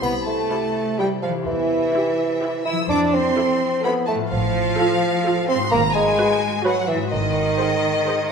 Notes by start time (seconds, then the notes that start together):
Already playing: C3 E4 G4
0.00 C2 B3 C5, triangle
0.05 B5
0.26 A3 A5
0.52 E4 G4 C5
0.98 G3 E4 G4 C5 G5
1.22 F3 F5
1.29 E3
1.33 E4
1.38 G4
1.42 E2 C5 E5
1.46 E3
1.94 E4 G4 C5
2.42 E4 G4 C5
2.65 E4 E6
2.72 F3
2.77 E4
2.81 A4
2.86 D4 C5
2.90 F2 D6
3.14 C4 C6
3.37 E4 A4 C5
3.84 B3 E4 A4 C5 B5
4.07 A3 A5
4.15 A2
4.19 F4
4.24 A4
4.28 F3 C5 F5
4.32 A1 F3
4.79 F4 A4 C5
5.25 F4 A4 C5
5.48 C4 C6
5.55 G#2
5.59 D#4
5.63 F#4
5.68 A#3 B4 A#5
5.72 G#1 A#3
5.95 G#3 G#5
6.18 F#4 B4 D#5
6.64 F#3 F#4 B4 D#5 F#5
6.88 E3 E5
6.94 G#2
6.98 D#4
7.03 F#4
7.07 D#3 C5
7.12 G#1 D#3 D#5
7.59 G#4 C5 F#5
8.05 G#4 C5 F#5